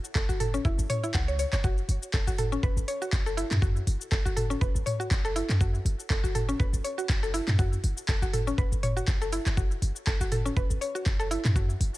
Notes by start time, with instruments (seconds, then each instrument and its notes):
0.05 shaker
0.15 synth arpeggio sound A4, kick, clap, shaker
0.29 808-style bass F#1, synth arpeggio sound F#4, shaker
0.40 synth arpeggio sound A4, open hi-hat, mid tom, shaker
0.54 synth arpeggio sound C#4, shaker
0.65 synth arpeggio sound E4, kick, shaker
0.79 808-style bass F#1, shaker
0.90 synth arpeggio sound C#5, open hi-hat, mid tom, shaker
1.04 synth arpeggio sound E4, shaker
1.14 808-style bass C#2, synth arpeggio sound F#5, kick, clap, shaker
1.28 synth arpeggio sound C#5, shaker
1.39 synth arpeggio sound C#5, open hi-hat, shaker
1.53 808-style bass F#1, synth arpeggio sound C#5, clap, shaker
1.64 synth arpeggio sound F#4, kick, shaker
1.78 shaker
1.89 808-style bass F#1, open hi-hat, shaker
2.03 shaker
2.14 synth arpeggio sound A4, kick, clap, shaker
2.27 808-style bass F#1, synth arpeggio sound F#4, shaker
2.38 synth arpeggio sound A4, open hi-hat, mid tom, shaker
2.52 synth arpeggio sound C#4, shaker
2.63 synth arpeggio sound B4, kick, shaker
2.77 808-style bass F#1, shaker
2.88 synth arpeggio sound C#5, open hi-hat, shaker
3.02 synth arpeggio sound F#4, shaker
3.13 808-style bass F#1, kick, clap, shaker
3.26 synth arpeggio sound A4, shaker
3.37 synth arpeggio sound E4, open hi-hat, shaker
3.51 808-style bass F#2, clap, mid tom, shaker
3.62 synth arpeggio sound F#4, kick, shaker
3.77 shaker
3.87 808-style bass F#1, open hi-hat, shaker
4.01 shaker
4.12 synth arpeggio sound A4, kick, clap, shaker
4.25 808-style bass F#1, synth arpeggio sound F#4, shaker
4.37 synth arpeggio sound A4, open hi-hat, mid tom, shaker
4.50 synth arpeggio sound C#4, shaker
4.61 synth arpeggio sound B4, kick, shaker
4.75 808-style bass F#1, shaker
4.86 synth arpeggio sound C#5, open hi-hat, mid tom, shaker
5.00 synth arpeggio sound F#4, shaker
5.11 808-style bass F#1, kick, clap, shaker
5.25 synth arpeggio sound A4, shaker
5.36 synth arpeggio sound E4, open hi-hat, shaker
5.49 808-style bass F#2, clap, shaker
5.61 synth arpeggio sound F#4, kick, shaker
5.75 shaker
5.85 808-style bass F#1, open hi-hat, shaker
6.00 shaker
6.10 synth arpeggio sound A4, kick, clap, shaker
6.24 808-style bass F#1, synth arpeggio sound F#4, shaker
6.35 synth arpeggio sound A4, open hi-hat, mid tom, shaker
6.49 synth arpeggio sound C#4, shaker
6.60 synth arpeggio sound B4, kick, shaker
6.73 808-style bass F#1, shaker
6.84 synth arpeggio sound C#5, open hi-hat, shaker
6.98 synth arpeggio sound F#4, shaker
7.09 808-style bass F#1, kick, clap, shaker
7.23 synth arpeggio sound A4, shaker
7.34 synth arpeggio sound E4, open hi-hat, shaker
7.48 808-style bass F#2, clap, mid tom, shaker
7.59 synth arpeggio sound F#4, kick, shaker
7.73 shaker
7.84 808-style bass F#1, open hi-hat, shaker
7.98 shaker
8.08 synth arpeggio sound A4, kick, clap, shaker
8.22 808-style bass F#1, synth arpeggio sound F#4, shaker
8.33 synth arpeggio sound A4, open hi-hat, mid tom, shaker
8.47 synth arpeggio sound C#4, shaker
8.58 synth arpeggio sound B4, kick, shaker
8.72 808-style bass F#1, shaker
8.83 synth arpeggio sound C#5, open hi-hat, mid tom, shaker
8.97 synth arpeggio sound F#4, shaker
9.08 808-style bass F#1, kick, clap, shaker
9.22 synth arpeggio sound A4, shaker
9.33 synth arpeggio sound E4, open hi-hat, shaker
9.46 808-style bass F#1, clap, shaker
9.57 synth arpeggio sound F#4, kick, shaker
9.71 shaker
9.82 808-style bass F#1, open hi-hat, shaker
9.96 shaker
10.07 synth arpeggio sound A4, kick, clap, shaker
10.20 808-style bass F#1, synth arpeggio sound F#4, shaker
10.32 synth arpeggio sound A4, open hi-hat, mid tom, shaker
10.45 synth arpeggio sound C#4, shaker
10.57 synth arpeggio sound B4, kick, shaker
10.70 808-style bass F#1, shaker
10.81 synth arpeggio sound C#5, open hi-hat, shaker
10.95 synth arpeggio sound F#4, shaker
11.06 808-style bass F#1, kick, clap, shaker
11.20 synth arpeggio sound A4, shaker
11.31 synth arpeggio sound E4, open hi-hat, shaker
11.45 808-style bass F#2, clap, mid tom, shaker
11.56 synth arpeggio sound F#4, kick, shaker
11.70 shaker
11.80 808-style bass F#1, open hi-hat, shaker
11.95 shaker